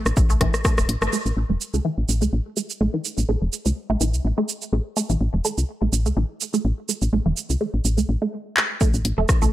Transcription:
0.06 A1, cross-stick, cabasa
0.17 A1, kick, cabasa
0.30 C2 A3, cabasa
0.41 A1 E3, kick, cross-stick, closed hi-hat
0.54 cross-stick, cabasa
0.65 A3, kick, cross-stick, cabasa
0.78 E1, cross-stick, cabasa
0.89 A1, closed hi-hat
1.02 G1 A3, cross-stick, cabasa
1.13 A3, cabasa
1.26 A1, cabasa
1.37 A1
1.50 E1 A3
1.61 cabasa
1.74 C2 A3, cabasa
1.85 E3
1.98 A1
2.09 A1, cabasa
2.22 C2 A3, cabasa
2.33 A1
2.57 A3, cabasa
2.70 cabasa
2.81 A1 A3
2.94 E3
3.05 cabasa
3.18 A1, cabasa
3.29 A1 A3
3.42 E1
3.53 cabasa
3.66 C2 A3, cabasa
3.90 A1 A3
4.01 A1 E3, cabasa
4.14 C2, cabasa
4.25 A1
4.38 A3
4.49 cabasa
4.62 cabasa
4.73 A1 A3
4.97 A3, cabasa
5.10 A1 E3, cabasa
5.21 A1
5.34 E1
5.45 A3, cabasa
5.58 C2, cabasa
5.82 A1 A3
5.93 A1, cabasa
6.06 C2 A3, cabasa
6.17 A1 E3
6.41 cabasa
6.54 A3, cabasa
6.65 A1
6.89 A3, cabasa
7.02 A1, cabasa
7.13 A1 A3
7.26 E1 E3
7.37 cabasa
7.50 C2, cabasa
7.61 A3
7.74 A1
7.85 A1, cabasa
7.98 C2 A3, cabasa
8.09 A1
8.22 A3
8.57 clap
8.81 A3, kick, cabasa
8.94 A1, cabasa
9.05 A1, closed hi-hat
9.18 E1 A3
9.29 kick, cross-stick, cabasa
9.42 C2 A3, cabasa

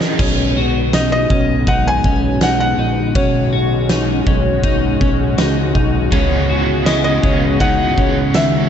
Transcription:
Already playing: E3 F#3 C#4 D#4 E4 G#4 A#4 D#5
0.01 snare
0.19 B1 G#3 B3 C#4 F#4, kick, crash
0.57 F#4
0.93 D#4 D#5, snare, ride, tambourine
1.12 D#5
1.30 B1 C#4, kick
1.67 D#4 F#5, kick, ride
1.88 G#5
2.04 B1 C#4, kick
2.41 D#4 F#5, snare, ride, tambourine
2.60 F#5
2.78 A#1 D#4
3.15 B1 C#4 C#5, kick, ride
3.53 F#4
3.89 D#4, snare, ride, tambourine
4.27 B1 C#4, kick
4.64 D#4, kick, ride
5.00 B1 C#4, kick
5.38 C#2 D#4, snare, ride, tambourine
5.75 B1 D#4, kick
6.11 C#2 C#3 G#3 B3 C#4 E4 G#4 D#5, kick, ride
6.47 B3 E4 F#4 G#4 D#5
6.86 C#3 G#3 B3 E4 G#4 D#5, snare, ride, tambourine
7.04 D#5
7.22 C#2 B3 C#4 E4 G#4 D#5, kick
7.59 B3 D#4 E4 G#4 D#5 F#5, kick, ride
7.96 C#2 B3 C#4 E4 G#4 D#5, kick
8.33 C#3 D#3 G#3 B3 G#4 E5, snare, ride, tambourine

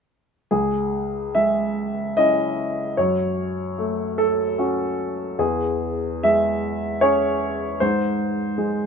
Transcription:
0.51 C#2 G#4
1.35 G#3 E5
2.17 C#4 E4 D#5
2.97 F#2 C#5
3.78 A3
4.18 A4
4.58 C#4 F#4
5.39 E2 G#4
6.23 G#3 E5
7.01 C#4 G#4 C#5
7.80 G#2 C5
8.58 G#3

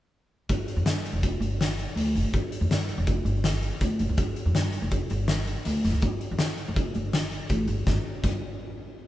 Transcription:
0.49 G1, kick, closed hi-hat
0.68 closed hi-hat
0.76 F2
0.85 G2, snare, closed hi-hat
1.05 closed hi-hat
1.13 F1
1.23 kick, closed hi-hat
1.40 G1, closed hi-hat
1.61 snare, closed hi-hat
1.79 closed hi-hat
1.96 D2, closed hi-hat
2.15 G1, closed hi-hat
2.24 D2
2.33 G1, kick, closed hi-hat
2.52 closed hi-hat
2.61 F2
2.70 G2, snare, closed hi-hat
2.89 closed hi-hat
2.98 F1
3.07 kick, closed hi-hat
3.25 G1, closed hi-hat
3.44 snare, closed hi-hat
3.63 closed hi-hat
3.81 D2, kick, snare, closed hi-hat
3.99 G1, closed hi-hat
4.09 D2
4.17 G1, kick, closed hi-hat
4.36 closed hi-hat
4.45 F2
4.55 G2, snare, closed hi-hat
4.72 closed hi-hat
4.82 F1
4.91 kick, closed hi-hat
5.10 G1, closed hi-hat
5.28 snare, closed hi-hat
5.47 closed hi-hat
5.65 D2, closed hi-hat
5.84 G1, snare, closed hi-hat
5.94 D2
6.02 G1, kick, closed hi-hat
6.21 closed hi-hat
6.31 F2
6.39 G2, snare, closed hi-hat
6.57 closed hi-hat
6.68 F1
6.76 kick, closed hi-hat
6.95 G1, closed hi-hat
7.13 snare, closed hi-hat
7.32 closed hi-hat
7.49 A1, kick, closed hi-hat
7.68 G1, closed hi-hat
7.87 G1, kick, snare
8.24 G1, kick, crash

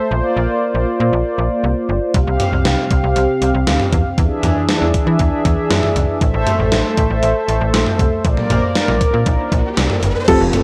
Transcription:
Already playing: C5
0.11 A#1 A#3 F4 D5
0.37 A#1
0.75 A#1
1.00 A#2
1.13 A#1
1.38 A#1
1.64 C2
1.89 G1
2.14 C2 C3 C4 G4 F5, kick, closed hi-hat
2.27 C2
2.40 closed hi-hat, mid tom
2.53 C2
2.65 C2, snare, closed hi-hat
2.91 C2, kick, closed hi-hat
3.03 C2
3.16 C2, closed hi-hat
3.42 C2, closed hi-hat
3.54 C2
3.67 D2, snare, closed hi-hat
3.80 mid tom
3.93 E2, kick, closed hi-hat
4.18 E2 E3 D4 G#4 E5, kick, closed hi-hat
4.43 E2, closed hi-hat, mid tom
4.69 snare, closed hi-hat
4.81 E2
4.94 kick, closed hi-hat
5.07 E3
5.19 E2, kick, closed hi-hat
5.45 E2, kick, closed hi-hat
5.70 F#2, snare, closed hi-hat
5.83 mid tom
5.96 C#2, closed hi-hat
6.21 A1 A3 A4 C5 E5, kick, closed hi-hat
6.34 A1
6.47 closed hi-hat, mid tom
6.59 A1
6.72 A1, snare, closed hi-hat
6.97 A1, kick, closed hi-hat
7.10 A1
7.23 A1, closed hi-hat
7.48 A1, closed hi-hat
7.61 A1
7.74 A#1, snare, closed hi-hat
7.86 mid tom
7.99 C2, kick, closed hi-hat
8.25 A#1 A#3 A#4 D5, kick, closed hi-hat, riser
8.37 mid tom
8.50 A#1, closed hi-hat, mid tom
8.75 snare, closed hi-hat
8.88 A#1, mid tom
9.01 kick, closed hi-hat
9.14 A#2
9.26 A#1, kick, closed hi-hat
9.52 A#1, kick, closed hi-hat
9.77 C2, snare, closed hi-hat
9.90 mid tom
10.03 G1, closed hi-hat
10.28 F1 F3 A3 C4 F4 G4 A4, kick, closed hi-hat, crash, impact
10.41 F1 F3
10.53 A3 C4 F4 A4, closed hi-hat, mid tom

